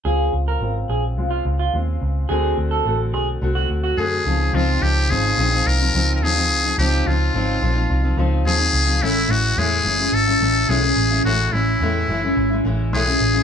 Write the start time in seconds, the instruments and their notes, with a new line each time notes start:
0.04 picked electric bass C#2, steel-string acoustic guitar C#3 G#3 C4 F4, clean electric guitar G#4
0.33 picked electric bass C#2
0.48 clean electric guitar A#4
0.60 picked electric bass G#1, steel-string acoustic guitar C#3 G#3 C4 F4
0.89 picked electric bass A#1, clean electric guitar G#4
1.17 picked electric bass C2, steel-string acoustic guitar C#3 G#3 C4 F4
1.31 clean electric guitar F4
1.45 picked electric bass C#2
1.59 clean electric guitar F4
1.73 picked electric bass D#2, steel-string acoustic guitar C#3 G#3 C4 F4
2.02 picked electric bass C#2
2.29 picked electric bass D2, steel-string acoustic guitar D3 A3 C4 F#4, clean electric guitar G#4
2.58 picked electric bass D2
2.71 clean electric guitar A4
2.85 picked electric bass A1, steel-string acoustic guitar D3 A3 C4 F#4
3.14 picked electric bass B1, clean electric guitar G#4
3.41 picked electric bass C2, steel-string acoustic guitar D3 A3 C4 F#4
3.55 clean electric guitar F#4
3.70 picked electric bass D2
3.84 clean electric guitar F#4
3.97 picked electric bass F#2, steel-string acoustic guitar D3 A3 C4 F#4, muted trumpet G#4
4.26 picked electric bass C#2, steel-string acoustic guitar C#3 F3 C4 D#4
4.53 picked electric bass C#2, steel-string acoustic guitar C#3 F3 C4 D#4, muted trumpet F4
4.82 picked electric bass C#2, steel-string acoustic guitar C#3 F3 C4 D#4, muted trumpet G4
5.10 picked electric bass G#1, steel-string acoustic guitar C#3 F3 C4 D#4, muted trumpet G#4
5.38 picked electric bass A#1, steel-string acoustic guitar C#3 F3 C4 D#4
5.52 steel-string acoustic guitar F3 C4 D#4
5.66 picked electric bass C2, muted trumpet A#4
5.80 steel-string acoustic guitar F3 C4 D#4
5.94 picked electric bass C#2, steel-string acoustic guitar C#3 F3 C4 D#4
6.16 muted trumpet A#4
6.22 picked electric bass D#2, steel-string acoustic guitar C#3 F3 C4 D#4, muted trumpet G#4
6.36 steel-string acoustic guitar F3 C4 D#4
6.50 picked electric bass C#2
6.64 steel-string acoustic guitar F3 C4 D#4
6.78 picked electric bass C#2, steel-string acoustic guitar C#3 F3 C4 D#4, muted trumpet G4
7.06 picked electric bass C#2, steel-string acoustic guitar C#3 F3 C4 D#4, muted trumpet F4
7.34 picked electric bass G#1, steel-string acoustic guitar C#3 F3 C4 D#4
7.62 picked electric bass A#1, steel-string acoustic guitar C#3 F3 C4 D#4
7.76 steel-string acoustic guitar F3 C4 D#4
7.90 picked electric bass C2
8.03 steel-string acoustic guitar F3 C4 D#4
8.17 picked electric bass C#2, steel-string acoustic guitar C#3 F3 C4 D#4
8.45 picked electric bass D#2, steel-string acoustic guitar C#3 F3 C4 D#4, muted trumpet G#4
8.59 steel-string acoustic guitar F3 C4 D#4
8.73 picked electric bass C#2
8.87 steel-string acoustic guitar F3 C4 D#4
9.01 picked electric bass A1, steel-string acoustic guitar A2 E3 G#3 C#4 E4, muted trumpet E4
9.29 picked electric bass A1, steel-string acoustic guitar E3 G#3 C#4 E4, muted trumpet F#4
9.57 picked electric bass E2, steel-string acoustic guitar A2 E3 G#3 C#4 E4, muted trumpet G#4
9.85 picked electric bass F#1, steel-string acoustic guitar E3 G#3 C#4 E4
9.99 steel-string acoustic guitar G#3 C#4 E4
10.12 picked electric bass G#1, muted trumpet A4
10.27 steel-string acoustic guitar G#3 C#4 E4
10.41 picked electric bass A1, steel-string acoustic guitar E3 G#3 C#4 E4
10.68 picked electric bass B1, steel-string acoustic guitar A2 E3 G#3 C#4 E4, muted trumpet G#4
10.84 steel-string acoustic guitar G#3 C#4
10.96 picked electric bass A1
11.11 steel-string acoustic guitar G#3 C#4 E4
11.24 picked electric bass A1, steel-string acoustic guitar A2 E3 G#3 C#4 E4, muted trumpet F#4
11.52 picked electric bass A1, steel-string acoustic guitar E3 G#3 C#4 E4, muted trumpet E4
11.81 picked electric bass E2, steel-string acoustic guitar A2 E3 G#3 C#4 E4
12.09 picked electric bass F#1, steel-string acoustic guitar E3 G#3 C#4 E4
12.23 steel-string acoustic guitar G#3 C#4 E4
12.37 picked electric bass G#1
12.51 steel-string acoustic guitar G#3 C#4 E4
12.64 picked electric bass A1, steel-string acoustic guitar E3 G#3 C#4 E4
12.92 picked electric bass B1, steel-string acoustic guitar A2 E3 G#3 C#4 E4, muted trumpet G#4
13.07 steel-string acoustic guitar G#3 C#4 E4
13.20 picked electric bass A1
13.34 steel-string acoustic guitar G#3 C#4 E4